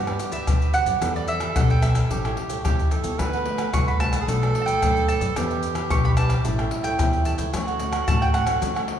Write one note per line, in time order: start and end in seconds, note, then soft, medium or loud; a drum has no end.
0.00 0.16 G2 medium
0.00 0.45 G3 medium
0.00 1.03 G4 medium
0.00 0.33 F#5 loud
0.07 0.44 B3 medium
0.07 0.44 D4 medium
0.07 0.18 G4 medium
0.07 0.19 B4 medium
0.07 0.19 D5 medium
0.07 pandeiro soft
0.07 tamborim medium
0.07 maracas soft
0.19 muted cavaquinho stroke soft
0.19 pandeiro medium
0.19 maracas medium
0.32 0.46 G4 medium
0.32 0.46 B4 medium
0.32 0.45 D5 medium
0.32 0.71 E5 medium
0.32 pandeiro medium
0.32 maracas medium
0.32 surdo soft
0.47 0.82 D2 medium
0.47 0.99 D3 medium
0.47 0.98 B3 medium
0.47 0.98 D4 medium
0.47 0.72 F#4 medium
0.47 0.73 G4 medium
0.47 0.73 B4 medium
0.47 0.74 D5 medium
0.47 pandeiro medium
0.47 tamborim medium
0.47 maracas medium
0.47 surdo loud
0.62 pandeiro soft
0.62 maracas soft
0.62 surdo soft
0.73 0.86 F#4 medium
0.73 0.87 G4 soft
0.73 0.86 B4 medium
0.73 0.85 D5 medium
0.73 1.12 F#5 medium
0.73 pandeiro medium
0.73 maracas medium
0.86 0.98 F#2 medium
0.86 1.01 G4 medium
0.86 1.00 B4 medium
0.86 1.00 D5 medium
0.86 pandeiro medium
0.86 maracas medium
0.86 surdo soft
1.01 1.48 E2 loud
1.01 1.53 E3 medium
1.01 1.52 B3 medium
1.01 1.14 D4 soft
1.01 1.52 D4 medium
1.01 1.14 G4 medium
1.01 1.52 G4 medium
1.01 2.11 A4 medium
1.01 1.15 B4 soft
1.01 1.15 E5 medium
1.01 pandeiro medium
1.01 tamborim medium
1.01 maracas medium
1.01 surdo medium
1.16 1.27 G4 medium
1.16 1.27 B4 medium
1.16 1.30 D5 medium
1.16 1.28 E5 medium
1.16 pandeiro soft
1.16 maracas soft
1.28 1.56 E5 medium
1.28 pandeiro medium
1.28 maracas medium
1.40 1.55 G4 medium
1.40 1.55 B4 medium
1.40 1.54 E5 medium
1.40 pandeiro medium
1.40 tamborim medium
1.40 maracas medium
1.56 2.02 B1 loud
1.56 2.08 B2 medium
1.56 1.79 B3 medium
1.56 1.69 D4 soft
1.56 1.79 D4 medium
1.56 1.69 G4 soft
1.56 1.79 G4 medium
1.56 1.69 B4 medium
1.56 1.69 E5 medium
1.56 1.70 F#5 medium
1.56 pandeiro medium
1.56 tamborim medium
1.56 maracas medium
1.56 surdo loud
1.70 1.96 G4 medium
1.70 1.95 B4 medium
1.70 1.93 E5 medium
1.70 1.83 G5 medium
1.70 pandeiro soft
1.70 maracas soft
1.82 1.99 B3 medium
1.82 1.99 D4 medium
1.82 1.99 G4 medium
1.82 2.88 E5 medium
1.82 pandeiro medium
1.82 tamborim medium
1.82 maracas medium
1.82 surdo soft
1.94 2.09 G4 medium
1.94 2.09 B4 medium
1.94 2.08 E5 medium
1.94 pandeiro medium
1.94 tamborim medium
1.94 maracas medium
1.94 surdo soft
2.10 2.34 A1 medium
2.10 2.62 A2 medium
2.10 2.19 G3 soft
2.10 2.19 C#4 medium
2.10 2.19 E4 medium
2.10 2.64 G4 medium
2.10 2.23 G4 soft
2.10 2.23 A4 medium
2.10 2.24 C#5 soft
2.10 2.23 G5 medium
2.10 pandeiro medium
2.10 maracas medium
2.10 surdo medium
2.24 2.61 G3 medium
2.24 2.61 C#4 medium
2.24 2.61 E4 medium
2.24 2.36 A4 medium
2.24 2.36 C#5 medium
2.24 2.37 G5 medium
2.24 pandeiro soft
2.24 tamborim medium
2.24 maracas soft
2.37 muted cavaquinho stroke soft
2.37 pandeiro medium
2.49 2.64 A4 medium
2.49 2.63 C#5 medium
2.49 2.63 G5 medium
2.49 pandeiro medium
2.49 maracas medium
2.49 surdo soft
2.64 2.99 E2 medium
2.64 3.17 E3 medium
2.64 3.15 G3 medium
2.64 3.15 C#4 medium
2.64 3.16 E4 medium
2.64 2.89 G4 medium
2.64 2.93 G4 medium
2.64 2.90 A4 medium
2.64 2.91 C#5 medium
2.64 2.92 G5 medium
2.64 pandeiro medium
2.64 tamborim medium
2.64 maracas medium
2.64 surdo medium
2.79 pandeiro soft
2.79 maracas soft
2.79 surdo soft
2.91 3.04 G4 soft
2.91 3.20 A4 medium
2.91 3.04 A4 medium
2.91 3.03 C#5 medium
2.91 3.02 G5 medium
2.91 pandeiro medium
2.91 maracas medium
3.04 3.16 E2 medium
3.04 3.18 A4 medium
3.04 3.18 C#5 medium
3.04 3.17 G5 medium
3.04 pandeiro medium
3.04 maracas medium
3.04 surdo soft
3.19 3.65 D2 loud
3.19 3.71 D3 medium
3.19 3.42 A3 medium
3.19 3.42 B3 medium
3.19 3.31 D4 soft
3.19 3.43 F#4 medium
3.19 3.32 A4 medium
3.19 4.01 B4 loud
3.19 3.32 B4 medium
3.19 3.32 F#5 medium
3.19 pandeiro medium
3.19 tamborim medium
3.19 maracas medium
3.19 surdo medium
3.33 3.44 A4 medium
3.33 3.45 B4 medium
3.33 3.45 F#5 medium
3.33 pandeiro soft
3.33 maracas soft
3.45 3.69 A3 medium
3.45 3.69 B3 medium
3.45 3.69 F#4 medium
3.45 muted cavaquinho stroke soft
3.45 pandeiro medium
3.58 3.72 A4 medium
3.58 3.72 B4 medium
3.58 3.71 F#5 medium
3.58 pandeiro medium
3.58 tamborim medium
3.58 maracas medium
3.73 4.19 C2 loud
3.73 4.25 A2 medium
3.73 3.90 A3 medium
3.73 3.90 B3 medium
3.73 3.86 D4 medium
3.73 3.90 F#4 medium
3.73 3.86 A4 medium
3.73 3.86 B4 soft
3.73 3.86 F#5 medium
3.73 3.86 C#6 loud
3.73 pandeiro medium
3.73 tamborim medium
3.73 maracas medium
3.73 surdo loud
3.87 4.13 A4 medium
3.87 4.12 B4 medium
3.87 4.11 F#5 medium
3.87 4.00 B5 medium
3.87 pandeiro soft
3.87 maracas soft
4.00 4.16 A3 medium
4.00 4.17 B3 medium
4.00 4.17 F#4 medium
4.00 4.60 A5 loud
4.00 pandeiro medium
4.00 tamborim medium
4.00 maracas medium
4.00 surdo soft
4.12 4.27 A4 medium
4.12 4.26 B4 medium
4.12 4.26 F#5 medium
4.12 pandeiro medium
4.12 tamborim medium
4.12 maracas medium
4.12 surdo soft
4.21 4.29 G#4 medium
4.27 4.51 B1 medium
4.27 4.80 B2 medium
4.27 4.36 A3 medium
4.27 4.40 D4 soft
4.27 4.36 D4 medium
4.27 4.37 F#4 medium
4.27 5.38 A4 loud
4.27 4.41 A4 soft
4.27 4.41 B4 soft
4.27 4.40 D5 medium
4.27 pandeiro medium
4.27 maracas medium
4.27 surdo medium
4.42 4.78 A3 medium
4.42 4.79 D4 medium
4.42 4.79 F#4 medium
4.42 4.53 A4 medium
4.42 4.53 B4 medium
4.42 4.54 D5 medium
4.42 pandeiro soft
4.42 tamborim medium
4.42 maracas soft
4.54 muted cavaquinho stroke soft
4.54 pandeiro medium
4.62 4.66 A5 medium
4.66 4.81 A4 medium
4.66 4.80 B4 medium
4.66 4.80 D5 medium
4.66 5.08 G5 medium
4.66 pandeiro medium
4.66 maracas medium
4.66 surdo soft
4.81 5.17 F#2 medium
4.81 5.34 F#3 medium
4.81 5.18 A3 medium
4.81 5.06 D4 medium
4.81 5.18 D4 medium
4.81 5.18 F#4 medium
4.81 5.06 A4 medium
4.81 5.07 B4 medium
4.81 5.08 D5 medium
4.81 pandeiro medium
4.81 tamborim medium
4.81 maracas medium
4.81 surdo loud
4.97 pandeiro soft
4.97 maracas soft
4.97 surdo soft
5.07 5.21 D4 medium
5.07 5.21 A4 medium
5.07 5.20 B4 medium
5.07 5.19 D5 medium
5.07 5.34 A5 medium
5.07 pandeiro medium
5.07 maracas medium
5.20 5.33 F#2 medium
5.20 5.35 A4 medium
5.20 5.34 B4 medium
5.20 5.34 D5 medium
5.20 pandeiro medium
5.20 maracas medium
5.20 surdo soft
5.35 5.82 E2 loud
5.35 5.88 E3 medium
5.35 5.48 D4 soft
5.35 5.72 D4 medium
5.35 5.49 G4 soft
5.35 6.46 G4 loud
5.35 5.72 G4 medium
5.35 5.49 B4 medium
5.35 5.72 B4 medium
5.35 5.49 E5 medium
5.35 pandeiro medium
5.35 tamborim medium
5.35 maracas medium
5.35 surdo medium
5.50 5.61 G4 medium
5.50 5.62 B4 medium
5.50 5.62 E5 medium
5.50 pandeiro soft
5.50 maracas soft
5.62 muted cavaquinho stroke soft
5.62 pandeiro medium
5.62 maracas medium
5.74 5.89 G4 medium
5.74 5.89 B4 medium
5.74 5.88 E5 medium
5.74 pandeiro medium
5.74 tamborim medium
5.74 maracas medium
5.89 6.37 B1 loud
5.89 6.42 B2 medium
5.89 6.02 D4 soft
5.89 6.14 D4 medium
5.89 6.03 G4 soft
5.89 6.14 G4 medium
5.89 6.03 B4 medium
5.89 6.14 B4 medium
5.89 6.02 E5 medium
5.89 6.03 C#6 loud
5.89 pandeiro medium
5.89 tamborim medium
5.89 maracas medium
5.89 surdo loud
6.04 6.30 G4 medium
6.04 6.29 B4 medium
6.04 6.28 E5 medium
6.04 6.10 B5 medium
6.04 pandeiro soft
6.04 maracas soft
6.17 6.35 D4 medium
6.17 6.35 G4 medium
6.17 6.35 B4 medium
6.17 6.83 A5 loud
6.17 pandeiro medium
6.17 tamborim medium
6.17 maracas medium
6.29 6.43 G4 medium
6.29 6.43 B4 medium
6.29 6.43 E5 medium
6.29 pandeiro medium
6.29 tamborim medium
6.29 maracas medium
6.29 surdo soft
6.44 6.68 A1 medium
6.44 6.96 A2 medium
6.44 6.53 G3 medium
6.44 6.53 C#4 medium
6.44 7.55 E4 loud
6.44 6.54 E4 medium
6.44 6.57 G4 soft
6.44 6.57 A4 soft
6.44 6.58 C#5 soft
6.44 6.57 G5 medium
6.44 pandeiro medium
6.44 maracas medium
6.44 surdo medium
6.58 6.95 G3 medium
6.58 6.95 C#4 medium
6.58 6.96 E4 medium
6.58 6.70 A4 medium
6.58 6.70 C#5 medium
6.58 6.70 G5 medium
6.58 pandeiro soft
6.58 tamborim medium
6.58 maracas soft
6.71 muted cavaquinho stroke soft
6.71 pandeiro medium
6.83 6.97 A4 medium
6.83 6.97 C#5 medium
6.83 6.97 G5 medium
6.83 7.25 G5 medium
6.83 pandeiro medium
6.83 maracas medium
6.83 surdo soft
6.98 7.34 E2 medium
6.98 7.51 E3 medium
6.98 7.34 G3 medium
6.98 7.34 C#4 medium
6.98 7.34 E4 medium
6.98 7.23 G4 medium
6.98 7.24 A4 medium
6.98 7.24 C#5 medium
6.98 7.25 G5 medium
6.98 pandeiro medium
6.98 tamborim medium
6.98 maracas medium
6.98 surdo loud
7.13 pandeiro soft
7.13 maracas soft
7.13 surdo soft
7.24 7.38 G4 soft
7.24 7.38 A4 medium
7.24 7.37 C#5 medium
7.24 7.36 G5 medium
7.24 7.33 A5 medium
7.24 pandeiro medium
7.24 maracas medium
7.38 7.51 C#2 medium
7.38 7.52 A4 medium
7.38 7.52 C#5 medium
7.38 7.51 G5 medium
7.38 pandeiro medium
7.38 maracas medium
7.38 surdo soft
7.53 8.00 D2 loud
7.53 8.05 D3 medium
7.53 7.70 F#3 medium
7.53 7.70 A3 medium
7.53 7.70 C#4 medium
7.53 7.66 D4 soft
7.53 8.99 F#4 loud
7.53 7.66 A4 soft
7.53 7.66 C#5 medium
7.53 7.66 F#5 medium
7.53 pandeiro medium
7.53 tamborim medium
7.53 maracas medium
7.53 surdo medium
7.67 7.78 A4 medium
7.67 7.79 C#5 medium
7.67 7.79 F#5 medium
7.67 pandeiro soft
7.67 maracas soft
7.79 7.96 F#3 medium
7.79 7.96 A3 medium
7.79 7.96 C#4 medium
7.79 muted cavaquinho stroke soft
7.79 pandeiro medium
7.79 maracas medium
7.92 8.06 A4 medium
7.92 8.06 C#5 medium
7.92 8.05 F#5 medium
7.92 pandeiro medium
7.92 tamborim medium
7.92 maracas medium
8.06 8.54 A1 loud
8.06 8.59 A2 medium
8.06 8.31 F#3 medium
8.06 8.31 A3 medium
8.06 8.31 C#4 medium
8.06 8.20 D4 soft
8.06 8.20 A4 soft
8.06 8.20 C#5 medium
8.06 8.20 F#5 medium
8.06 8.21 A5 loud
8.06 pandeiro medium
8.06 tamborim medium
8.06 maracas medium
8.06 surdo loud
8.21 8.46 A4 medium
8.21 8.46 C#5 medium
8.21 8.44 F#5 medium
8.21 8.27 G5 medium
8.21 pandeiro soft
8.21 maracas soft
8.34 8.43 F#3 medium
8.34 8.43 A3 medium
8.34 8.43 C#4 medium
8.34 8.99 F#5 loud
8.34 pandeiro medium
8.34 tamborim medium
8.34 maracas medium
8.34 surdo soft
8.46 8.57 F#3 medium
8.46 8.57 A3 medium
8.46 8.57 C#4 medium
8.46 8.60 A4 medium
8.46 8.60 C#5 medium
8.46 8.60 F#5 medium
8.46 pandeiro medium
8.46 tamborim medium
8.46 maracas medium
8.46 surdo soft
8.61 8.85 D2 medium
8.61 8.99 D3 medium
8.61 8.70 F#3 soft
8.61 8.70 A3 medium
8.61 8.71 C#4 medium
8.61 8.74 D4 soft
8.61 8.74 A4 medium
8.61 8.75 C#5 medium
8.61 8.74 F#5 medium
8.61 pandeiro medium
8.61 maracas medium
8.61 surdo medium
8.75 8.99 F#3 medium
8.75 8.99 A3 medium
8.75 8.99 C#4 medium
8.75 8.87 A4 medium
8.75 8.87 C#5 medium
8.75 8.87 F#5 medium
8.75 pandeiro soft
8.75 tamborim medium
8.75 maracas soft
8.87 muted cavaquinho stroke soft
8.87 pandeiro medium